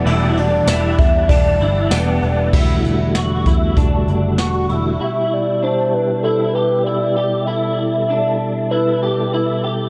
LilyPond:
<<
  \new Staff \with { instrumentName = "Soft synth lead" } { \time 4/4 \key e \minor \tempo 4 = 97 r8 d''4 e''8 d''4. r8 | r1 | e''8 d''8 c''8 b'8 a'8 b'8 d''4 | e''4 e''4 b'4. r8 | }
  \new Staff \with { instrumentName = "Clean electric guitar" } { \time 4/4 \key e \minor e'8 d'8 e'4 d'8 e'8 b4 | e'4 fis'8 e'8 d'4 fis'8 e'8 | e'4 d'4 e'8 g'8 e'8 g'8 | e'4 d'4 e'8 g'8 e'8 g'8 | }
  \new Staff \with { instrumentName = "Tonewheel organ" } { \time 4/4 \key e \minor a''1 | g1 | g'1 | a'1 | }
  \new Staff \with { instrumentName = "Tonewheel organ" } { \time 4/4 \key e \minor <g d'' fis''>1 | <d a fis'>1 | <b, g e'>1~ | <b, g e'>1 | }
  \new Staff \with { instrumentName = "Clean electric guitar" } { \time 4/4 \key e \minor <e, b, e a d' g'>4 <e a d' g'>4 <e a d' g'>4 <e a d' g'>4 | r1 | r1 | r1 | }
  \new Staff \with { instrumentName = "Picked electric bass" } { \clef bass \time 4/4 \key e \minor e,,4 e,,8 e,8 e,,8 g,,8 e,,8 e,,8 | e,,8 e,,8 e,,8 e,8 e,,8 fis,,8 e,,8 e,,8 | r1 | r1 | }
  \new DrumStaff \with { instrumentName = "Drums" } \drummode { \time 4/4 cymr8 cymr8 <cymr sn tamb>8 <bd cymr>8 <bd cymr>8 cymr8 <cymr sn tamb>8 cymr8 | <cymc bd>8 hh8 <hh sn>8 <hh bd>8 <hh bd>8 hh8 <hh sn>8 hh8 | r4 r4 r4 r4 | r4 r4 r4 r4 | }
>>